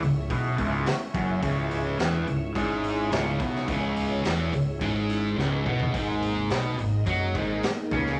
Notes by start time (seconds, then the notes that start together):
Already playing: G#3 C#4 E4 C#5 E5
0.01 C#1 C#2, open hi-hat, high conga, low conga
0.30 B1 B2 B3, kick, open hi-hat
0.58 C#1 C#2 C#3, kick, open hi-hat
0.86 snare, open hi-hat
1.14 F#1 F#2 F#3, kick, open hi-hat, low conga
1.29 high conga
1.42 C#1 C#2 C#3, kick, open hi-hat
1.71 open hi-hat, low conga
1.85 high conga
1.99 E1 E2 E3, snare, open hi-hat
2.13 high conga
2.26 C#1 C#2, open hi-hat, high conga, low conga
2.55 G#1 G#2 G#3, kick, open hi-hat
2.84 open hi-hat
3.11 C#1 C#2 C#3, snare, open hi-hat
3.39 B1 B2 B3, kick, open hi-hat, low conga
3.53 snare, high conga
3.68 C#1 C#2 C#3, kick, open hi-hat
3.96 open hi-hat, low conga
4.11 high conga
4.24 E1 E2 E3, snare, open hi-hat
4.39 high conga
4.52 C#1 C#2, open hi-hat, high conga, low conga
4.81 G#1 G#2 G#3, kick, open hi-hat, low conga
5.09 open hi-hat
5.37 C#1 C#2 C#3, snare
5.65 B1 B2 B3, mid tom, low conga
5.80 floor tom, high conga
5.93 G#1 G#2 G#3 A#3 D#4 A#4 D#5, kick, open hi-hat
6.22 open hi-hat, low conga
6.37 high conga
6.50 B1 B2 B3, snare, open hi-hat
6.65 high conga
6.77 G#1 G#2, open hi-hat, high conga, low conga
7.06 F#2 F#3 F#4, kick, open hi-hat
7.35 G#1 G#2 G#3, kick, open hi-hat
7.63 snare, open hi-hat
7.91 C#2 C#3 C#4, kick, open hi-hat, low conga
8.06 snare, high conga